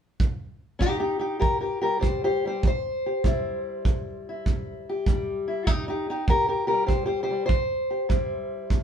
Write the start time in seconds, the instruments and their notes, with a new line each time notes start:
0.20 kick
0.79 steel-string acoustic guitar C3 D#4 G4, kick
1.00 steel-string acoustic guitar D#4 G4
1.19 steel-string acoustic guitar D#4 G4
1.40 steel-string acoustic guitar G3 G4 A#4, kick
1.60 steel-string acoustic guitar G4 A#4
1.81 steel-string acoustic guitar G3 G4 A#4
2.00 steel-string acoustic guitar C3 G4 C5, kick
2.24 steel-string acoustic guitar G4 C5
2.45 steel-string acoustic guitar G3 G4 C5
2.63 steel-string acoustic guitar G3, kick
2.67 steel-string acoustic guitar C5
3.06 steel-string acoustic guitar G4
3.24 steel-string acoustic guitar C3 G3 E4, kick
3.85 steel-string acoustic guitar E3, kick
4.29 steel-string acoustic guitar E4
4.46 steel-string acoustic guitar G2, kick
4.89 steel-string acoustic guitar G4
5.06 steel-string acoustic guitar E3 G3, kick
5.48 steel-string acoustic guitar E4
5.66 steel-string acoustic guitar C3 D#4 G4, kick
5.88 steel-string acoustic guitar D#4 G4
6.10 steel-string acoustic guitar D#4 G4
6.28 steel-string acoustic guitar G3 G4 A#4, kick
6.49 steel-string acoustic guitar G4 A#4
6.67 steel-string acoustic guitar G4 A#4
6.72 steel-string acoustic guitar G3
6.86 steel-string acoustic guitar G4 C5, kick
6.91 steel-string acoustic guitar C3
7.06 steel-string acoustic guitar G4 C5
7.23 steel-string acoustic guitar G4 C5
7.31 steel-string acoustic guitar G3
7.46 steel-string acoustic guitar G3 C5, kick
7.90 steel-string acoustic guitar G4
8.09 steel-string acoustic guitar C3 G3 E4, kick
8.70 steel-string acoustic guitar E3, kick